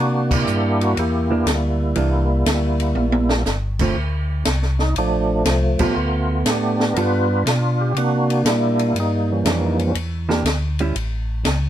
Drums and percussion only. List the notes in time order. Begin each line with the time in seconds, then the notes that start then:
0.31 kick, crash
0.47 hi-hat pedal
0.81 ride
0.97 ride
1.47 snare, hi-hat pedal, ride
1.96 ride
2.46 snare, hi-hat pedal, ride
2.80 ride
2.95 high tom
3.12 high tom
3.29 snare
3.46 snare, hi-hat pedal
3.79 kick, crash
4.45 snare, hi-hat pedal, ride
4.62 snare
4.79 snare
4.96 ride
5.46 snare, hi-hat pedal, ride
5.79 kick, crash
6.46 snare, hi-hat pedal, ride
6.80 snare
6.96 ride
7.47 snare, hi-hat pedal, ride
7.97 ride
8.30 ride
8.46 snare, hi-hat pedal, ride
8.79 ride
8.96 ride
9.46 snare, hi-hat pedal, ride
9.79 ride
9.95 ride
10.30 snare
10.46 snare, hi-hat pedal, ride
10.79 ride
10.96 ride
11.45 snare, hi-hat pedal, ride